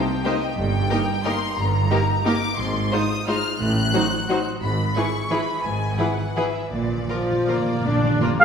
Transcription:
0.00 0.25 G5 medium
0.25 0.33 A#3 soft
0.25 0.33 D#4 medium
0.25 0.33 G4 soft
0.25 0.33 C5 soft
0.25 0.41 D#5 medium
0.42 0.57 G5 medium
0.57 0.85 G1 medium
0.57 0.85 G2 medium
0.57 1.24 G5 medium
0.90 0.99 A#3 soft
0.90 0.99 D#4 soft
0.90 0.98 G4 medium
0.90 0.98 A#4 soft
1.25 1.33 A#3 medium
1.25 1.33 D#4 soft
1.25 1.33 G4 soft
1.25 1.33 A#4 medium
1.25 1.58 C6 medium
1.58 1.85 G1 medium
1.58 1.85 G2 medium
1.58 2.26 A#5 medium
1.91 1.99 A#3 medium
1.91 1.99 D#4 medium
1.91 1.99 G4 medium
1.91 1.99 A#4 soft
2.25 2.33 A#3 soft
2.25 2.33 D#4 medium
2.25 2.34 G4 soft
2.25 2.34 A#4 medium
2.25 2.58 D6 medium
2.58 2.86 G#1 medium
2.58 2.86 G#2 medium
2.58 2.92 C6 medium
2.92 3.00 G#3 medium
2.92 3.00 D#4 medium
2.92 3.01 F4 medium
2.92 3.00 C5 medium
2.92 3.27 D#6 medium
3.27 3.35 G#3 soft
3.27 3.36 D#4 medium
3.27 3.35 F4 soft
3.27 3.35 C5 soft
3.27 3.60 F6 medium
3.60 3.88 A1 medium
3.60 3.88 A2 medium
3.60 4.45 F#6 medium
3.93 4.02 F#3 soft
3.93 4.02 D#4 medium
3.93 4.01 F#4 medium
3.93 4.02 C5 soft
4.29 4.37 F#3 medium
4.29 4.38 D#4 soft
4.29 4.37 F#4 soft
4.29 4.37 C5 soft
4.62 4.91 G#1 medium
4.62 4.90 G#2 medium
4.62 4.94 B5 medium
4.96 5.05 E3 soft
4.96 5.05 E4 soft
4.96 5.04 G#4 soft
4.96 5.04 B4 soft
4.96 5.31 C#6 medium
5.30 5.40 E3 soft
5.30 5.40 E4 soft
5.30 5.39 G#4 soft
5.30 5.38 B4 soft
5.30 5.64 B5 medium
5.64 5.93 G#1 medium
5.64 5.93 G#2 medium
5.64 5.99 G#5 medium
5.99 6.07 E3 soft
5.99 6.07 E4 soft
5.99 6.07 G#4 soft
5.99 6.07 B4 soft
5.99 6.36 F#5 medium
6.36 6.44 E3 soft
6.36 6.44 E4 soft
6.36 6.44 G#4 soft
6.36 6.44 B4 soft
6.36 6.72 E5 medium
6.71 7.03 A#1 soft
6.71 7.03 A#2 medium
6.71 6.79 A#2 soft
6.71 8.37 D5 medium
6.80 6.87 A#2 soft
6.88 6.95 A#2 soft
6.96 7.03 A#2 soft
7.04 7.12 A#2 soft
7.09 7.21 A#2 soft
7.09 7.46 F3 medium
7.09 7.17 F4 soft
7.09 7.17 A#4 soft
7.23 7.30 A#2 soft
7.31 7.38 A#2 soft
7.40 7.47 A#2 soft
7.48 7.55 A#2 soft
7.48 7.85 A#3 soft
7.48 7.57 F4 soft
7.48 7.57 A#4 soft
7.56 7.63 A#2 soft
7.64 7.71 A#2 soft
7.72 7.78 A#2 soft
7.79 7.86 A#2 soft
7.85 8.15 A#1 soft
7.85 8.15 A#2 soft
7.85 7.93 A#2 soft
7.85 8.21 D4 medium
7.95 8.01 A#2 soft
8.02 8.09 A#2 soft
8.10 8.17 A#2 soft
8.19 8.26 A#2 medium
8.19 8.29 A#3 medium
8.19 8.29 F4 soft
8.19 8.29 A#4 soft
8.27 8.34 A#2 soft
8.35 8.42 A#2 medium
8.40 8.45 G#3 soft
8.40 8.45 G#4 soft
8.40 8.45 G#4 medium
8.40 8.45 F5 medium
8.40 8.45 G#5 medium

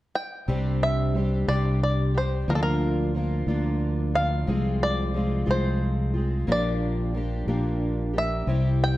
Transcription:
0.15 0.78 G5 medium
0.48 1.44 C2 medium
0.48 1.15 C3 medium
0.48 1.13 G3 medium
0.48 1.15 C4 medium
0.48 1.17 D4 medium
0.48 1.16 G4 medium
0.83 1.45 E5 medium
1.15 1.48 G3 soft
1.15 1.47 C4 medium
1.15 1.47 D4 soft
1.15 1.47 G4 soft
1.48 2.44 C2 medium
1.48 2.16 C3 soft
1.48 2.15 G3 soft
1.48 2.15 C4 soft
1.48 2.15 D4 medium
1.48 2.13 G4 medium
1.48 1.79 D5 medium
1.83 2.13 D5 medium
2.14 2.49 C4 soft
2.14 2.49 D4 soft
2.14 2.48 G4 soft
2.14 2.47 C5 medium
2.48 3.44 D2 medium
2.48 3.15 D3 medium
2.48 3.14 F3 medium
2.48 3.15 A#3 medium
2.48 3.16 D4 medium
2.48 3.17 F4 medium
2.48 2.55 A#4 medium
2.55 2.62 A4 medium
2.63 4.20 A#4 medium
3.15 3.48 F3 soft
3.15 3.48 A#3 medium
3.15 3.47 D4 medium
3.15 3.47 F4 medium
3.47 4.44 D2 medium
3.47 4.16 D3 medium
3.47 4.47 F3 medium
3.47 4.15 A#3 medium
3.47 4.15 D4 medium
3.47 4.14 F4 medium
4.14 4.48 A#3 soft
4.14 4.48 D4 soft
4.14 4.48 F4 soft
4.14 4.78 F5 medium
4.47 5.44 C2 medium
4.47 5.14 C3 medium
4.47 5.14 F3 medium
4.47 5.14 G#3 medium
4.47 5.15 C4 medium
4.47 5.16 F4 medium
4.83 5.51 D5 medium
5.14 5.46 F3 medium
5.14 5.46 G#3 soft
5.14 5.46 C4 medium
5.14 5.45 F4 medium
5.46 6.44 C2 medium
5.46 6.15 C3 soft
5.46 6.15 F3 soft
5.46 6.14 G#3 medium
5.46 6.14 C4 soft
5.46 6.12 F4 medium
5.51 6.53 C5 medium
6.14 6.48 G#3 soft
6.14 6.48 C4 soft
6.14 6.48 F4 soft
6.47 7.44 A#1 medium
6.47 7.14 A#2 medium
6.47 7.13 F3 medium
6.47 7.15 A#3 medium
6.47 7.15 D4 medium
6.47 7.17 G4 medium
6.52 8.13 D5 medium
7.14 7.48 F3 soft
7.14 7.47 A#3 soft
7.14 7.47 D4 soft
7.14 7.47 G4 medium
7.47 8.44 A#1 medium
7.47 8.16 A#2 soft
7.47 8.15 F3 medium
7.47 8.15 A#3 medium
7.47 8.14 D4 medium
7.47 8.12 G4 medium
8.13 8.48 A#3 soft
8.13 8.48 D4 soft
8.13 8.48 G4 soft
8.18 8.83 E5 medium
8.47 8.97 C2 medium
8.47 8.97 C3 medium
8.47 8.97 G3 medium
8.47 8.97 C4 medium
8.47 8.97 E4 medium
8.47 8.97 G4 medium
8.84 8.97 G5 medium

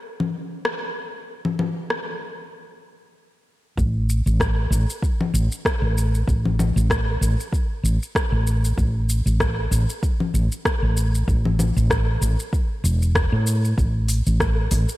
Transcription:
0.00 3.15 A1 medium
0.20 low conga medium
0.65 cross-stick loud
1.45 low conga medium
1.59 low conga medium
1.90 cross-stick medium
3.77 4.20 A1 loud
3.77 kick loud
3.77 shaker soft
4.09 shaker medium
4.26 4.66 A1 medium
4.26 shaker soft
4.40 kick loud
4.40 cross-stick loud
4.40 shaker soft
4.70 4.84 A1 loud
4.70 shaker medium
4.90 shaker soft
5.03 kick loud
5.03 shaker soft
5.21 low conga medium
5.34 5.47 A1 medium
5.34 shaker medium
5.52 shaker soft
5.65 kick loud
5.65 cross-stick loud
5.65 shaker soft
5.82 6.22 A1 medium
5.98 shaker medium
6.15 shaker soft
6.28 6.70 A1 loud
6.28 kick loud
6.28 shaker soft
6.45 low conga medium
6.59 low conga medium
6.59 shaker medium
6.76 7.16 A1 medium
6.76 shaker soft
6.90 kick loud
6.90 cross-stick loud
6.90 shaker soft
7.21 7.35 A1 medium
7.21 shaker medium
7.40 shaker soft
7.53 kick loud
7.53 shaker soft
7.83 7.97 A1 medium
7.83 shaker medium
8.02 shaker soft
8.15 kick loud
8.15 cross-stick loud
8.15 shaker soft
8.32 8.72 A1 medium
8.47 shaker medium
8.65 shaker soft
8.78 9.20 A1 loud
8.78 kick loud
8.78 shaker soft
9.09 shaker medium
9.26 9.66 A1 medium
9.26 shaker soft
9.40 kick loud
9.40 cross-stick loud
9.40 shaker soft
9.71 9.85 A1 loud
9.71 shaker medium
9.90 shaker soft
10.03 kick loud
10.03 shaker soft
10.20 low conga medium
10.34 10.47 A1 medium
10.34 shaker medium
10.52 shaker soft
10.65 kick loud
10.65 cross-stick loud
10.65 shaker soft
10.82 11.22 A1 medium
10.97 shaker medium
11.15 shaker soft
11.28 11.70 A1 loud
11.28 kick loud
11.28 shaker soft
11.45 low conga medium
11.59 low conga medium
11.59 shaker medium
11.76 12.16 A1 medium
11.76 shaker soft
11.90 kick loud
11.90 cross-stick loud
11.90 shaker soft
12.21 12.35 A1 medium
12.21 shaker medium
12.40 shaker soft
12.53 kick loud
12.53 shaker soft
12.84 13.26 E1 loud
12.84 shaker medium
13.02 shaker soft
13.15 kick loud
13.15 cross-stick loud
13.15 shaker soft
13.32 13.72 A2 loud
13.47 shaker medium
13.64 shaker soft
13.78 14.20 A1 loud
13.78 kick loud
13.78 shaker soft
14.09 open hi-hat medium
14.09 shaker medium
14.27 14.66 A1 medium
14.27 shaker soft
14.40 kick loud
14.40 cross-stick loud
14.40 shaker soft
14.71 14.85 A1 loud
14.71 open hi-hat medium
14.71 shaker medium
14.89 shaker soft

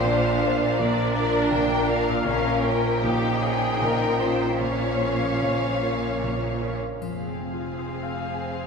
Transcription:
0.00 2.24 A#1 medium
0.00 2.23 A#2 medium
0.00 2.24 F3 medium
0.00 0.79 C5 medium
0.00 2.24 D5 medium
0.04 0.41 A#1 medium
0.04 0.41 A#2 medium
0.04 0.78 D4 medium
0.04 0.79 F5 medium
0.42 0.75 F4 soft
0.42 0.75 A#4 medium
0.42 0.75 D5 medium
0.78 1.15 A#1 medium
0.78 1.15 A#2 medium
0.78 2.25 D4 medium
0.78 2.26 A#4 medium
0.78 1.14 D5 medium
1.15 1.49 F4 soft
1.15 1.49 A#4 soft
1.15 1.52 D5 medium
1.15 1.49 D5 medium
1.51 1.88 A#1 medium
1.51 1.88 A#2 medium
1.51 1.89 G5 medium
1.88 2.23 F4 soft
1.88 2.23 A#4 medium
1.88 2.23 D5 medium
1.88 2.26 F5 medium
2.09 5.99 A#2 medium
2.14 6.04 F4 soft
2.18 6.08 A#4 soft
2.22 2.63 A#1 medium
2.22 2.63 A#2 medium
2.22 6.64 F3 medium
2.22 6.12 C#4 soft
2.22 6.64 C#4 medium
2.27 6.77 A#1 medium
2.27 6.77 A#2 medium
2.27 3.04 C#4 medium
2.27 3.02 A#4 medium
2.27 2.64 F5 medium
2.64 2.99 F4 soft
2.64 2.99 A#4 soft
2.64 2.99 C#5 soft
2.64 4.61 G5 medium
3.02 3.41 A#1 medium
3.02 3.41 A#2 medium
3.02 4.62 D#4 medium
3.02 3.42 G4 medium
3.41 3.78 F4 soft
3.41 3.82 G#4 medium
3.41 3.78 A#4 soft
3.41 3.78 C#5 soft
3.81 4.20 A#1 medium
3.81 4.20 A#2 medium
3.81 4.21 A#4 medium
4.20 4.58 C#4 soft
4.20 4.58 F4 soft
4.20 4.58 A#4 soft
4.20 4.61 C5 medium
4.59 5.01 A#1 soft
4.59 5.01 A#2 soft
4.59 6.77 C#4 medium
4.59 6.75 C#5 medium
4.59 6.81 F5 medium
5.02 5.39 F4 soft
5.02 5.39 A#4 soft
5.02 5.39 C#5 soft
5.42 5.82 A#1 medium
5.42 5.82 A#2 soft
5.82 6.18 F4 soft
5.82 6.19 A#4 soft
5.82 6.19 C#5 soft
6.23 6.61 A#1 soft
6.23 6.61 A#2 soft
6.62 6.97 F4 soft
6.62 6.97 A#4 soft
6.62 6.97 C#5 soft
7.01 8.67 F1 soft
7.01 8.67 F2 soft
7.01 8.67 F3 soft
7.01 8.67 C4 soft
7.01 8.67 G#4 soft
7.01 8.67 F5 soft
7.01 triangle soft
7.28 8.67 C4 soft
7.40 8.00 C3 soft
7.53 8.67 F4 soft
7.78 8.38 F4 soft
7.78 8.52 C5 soft
8.03 8.67 F5 soft
8.15 8.67 G#4 soft
8.29 8.67 G#5 soft
8.52 8.67 C5 soft

